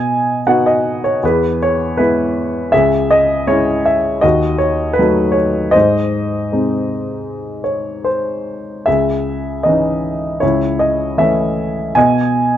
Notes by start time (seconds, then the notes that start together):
Already playing: B2 D#5 G#5
0.47 B3 D#4 F#4 F#5
0.66 D#5
1.04 C#5
1.23 E2 G#4 B4
1.63 C#5
1.97 G#3 B3 E4 B4
2.72 C#2 G#4 E5
3.11 D#5
3.47 G#3 C#4 E4 C#5
3.86 E5
4.21 D#2 F#4 D#5
4.58 C#5
4.93 B4
4.99 F#3 A3 D#4
5.32 C#5
5.71 C5 D#5
5.76 G#2
6.52 C3 G#3 D#4
7.64 C#5
8.04 C5
8.86 C#2 G#4 E5
9.63 E3 C#4 D#4 D#5
10.40 C#2 E4 C#5
10.79 D#5
11.18 E3 A3 C#4 E5
11.95 B2 D#5 G#5